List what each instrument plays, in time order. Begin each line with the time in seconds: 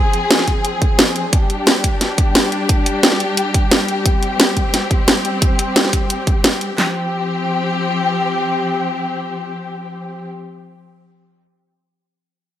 Already playing: string section F3 C4 G#4
0.14 closed hi-hat
0.31 snare, closed hi-hat
0.39 snare
0.48 kick, closed hi-hat
0.65 closed hi-hat
0.82 kick, closed hi-hat
0.99 snare, closed hi-hat
1.16 closed hi-hat
1.33 string section G3 D4 G4, kick, closed hi-hat
1.50 closed hi-hat
1.67 snare, closed hi-hat
1.84 kick, closed hi-hat
2.01 snare, closed hi-hat
2.18 kick, closed hi-hat
2.35 snare, closed hi-hat
2.52 closed hi-hat
2.69 kick, closed hi-hat
2.86 closed hi-hat
3.03 snare, closed hi-hat
3.12 snare
3.20 closed hi-hat
3.37 closed hi-hat
3.54 kick, closed hi-hat
3.71 snare, closed hi-hat
3.88 closed hi-hat
4.06 string section C4, kick, closed hi-hat
4.23 closed hi-hat
4.40 snare, closed hi-hat
4.57 kick, closed hi-hat
4.74 snare, closed hi-hat
4.91 kick, closed hi-hat
5.08 snare, closed hi-hat
5.25 closed hi-hat
5.42 kick, closed hi-hat
5.59 closed hi-hat
5.76 snare, closed hi-hat
5.85 snare
5.93 kick, closed hi-hat
6.10 closed hi-hat
6.27 kick, closed hi-hat
6.44 snare, closed hi-hat
6.61 closed hi-hat
6.78 string section F3 C4 G4, snare, clap